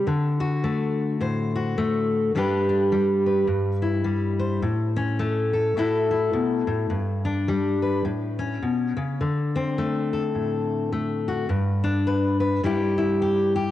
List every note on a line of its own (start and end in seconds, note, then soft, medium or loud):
0.07 2.34 D3 medium
0.40 1.53 F#4 medium
0.64 1.77 A3 medium
1.21 2.31 A2 medium
1.21 2.31 C5 medium
1.56 2.32 F#4 medium
1.78 2.31 A3 medium
2.35 3.46 G2 medium
2.35 2.91 G3 medium
2.35 2.68 D4 soft
2.35 3.46 G4 medium
2.35 3.25 B4 medium
2.69 3.46 D4 soft
2.92 4.03 G3 medium
3.26 3.46 B4 soft
3.47 4.62 G2 medium
3.82 4.59 E4 soft
4.04 4.62 G3 medium
4.39 4.59 C5 medium
4.62 5.74 A2 medium
4.96 5.74 C#4 medium
5.19 5.77 A3 medium
5.53 5.79 A4 soft
5.77 6.33 A2 medium
5.77 6.93 A3 medium
5.77 6.10 E4 medium
5.77 6.89 F#4 soft
5.77 6.93 A4 medium
6.11 6.88 E4 medium
6.33 6.67 B2 medium
6.67 6.89 A2 medium
6.90 8.04 G2 medium
7.25 8.03 D4 medium
7.48 8.05 G3 medium
7.82 8.02 B4 soft
8.05 8.62 A2 medium
8.39 9.17 C#4 medium
8.62 8.96 B2 medium
8.96 9.20 C#3 medium
9.21 11.49 D3 medium
9.56 11.49 C4 medium
9.78 10.91 A3 medium
10.13 11.47 A4 soft
10.35 11.46 A2 soft
10.92 11.46 A3 medium
11.28 11.47 F#4 medium
11.49 12.62 G2 medium
11.84 12.60 D4 medium
12.07 12.39 B4 medium
12.40 12.60 B4 medium
12.64 13.71 G2 medium
12.64 13.71 G3 medium
12.64 12.97 E4 soft
12.64 13.20 G4 medium
12.98 13.71 E4 medium
13.22 13.54 G4 medium
13.56 13.71 G4 medium